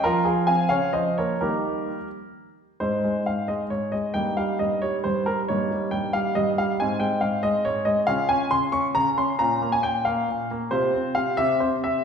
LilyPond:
<<
  \new Staff \with { instrumentName = "Grand piano" } { \time 6/8 \key aes \major \tempo 4. = 90 << { <f' bes'>8 <f' aes'>8 <f'' aes''>8 <des'' f''>8 <c'' ees''>8 <bes' des''>8 | <g' bes'>4. r4. | c''4 f''8 ees''8 des''8 ees''8 | g''8 f''8 ees''8 des''8 c''8 bes'8 |
des''4 g''8 f''8 ees''8 f''8 | aes''8 g''8 f''8 ees''8 des''8 ees''8 | \key bes \dorian f''8 aes''8 c'''8 des'''8 bes''8 c'''8 | bes''8. aes''16 g''8 f''4 r8 |
c''4 f''8 e''8 c''8 e''8 | } \\ { r2. | r2. | <aes ees'>2. | <bes ees'>2. |
<bes ees'>2. | <c' ees'>2. | <des' f'>2. | <des' f'>2. |
<c' f'>4. <c' g'>4. | } >> }
  \new Staff \with { instrumentName = "Grand piano" } { \clef bass \time 6/8 \key aes \major f8 f8 <f c'>8 des8 f8 <f bes>8 | <ees g bes>4. r4. | aes,8 aes8 aes,8 aes8 aes,8 aes8 | g,8 g8 g,8 g8 g,8 g8 |
g,8 g8 g,8 g8 g,8 g8 | aes,8 aes8 aes,8 aes8 aes,8 aes8 | \key bes \dorian des8 des'8 des8 des'8 des8 des'8 | bes,8 bes8 bes,8 bes8 bes,8 bes8 |
c8 c'8 c8 c8 c'8 c8 | }
>>